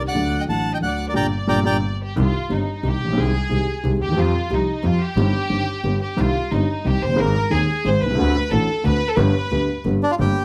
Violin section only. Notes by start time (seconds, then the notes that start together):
0.06 D5
0.40 D#5
0.48 F#5
0.73 D#5
0.83 D5
1.09 A#4
1.18 D5
2.03 G4
2.20 F4
2.53 D#4
2.87 G4
3.19 G#4
4.02 G4
4.19 F4
4.53 D#4
4.85 F4
5.02 G4
6.02 G4
6.19 F4
6.53 D#4
6.87 G4
7.03 C5
7.19 A#4
7.53 G#4
7.86 C5
8.02 B4
8.51 A4
8.84 B4
9.08 A4
9.17 B4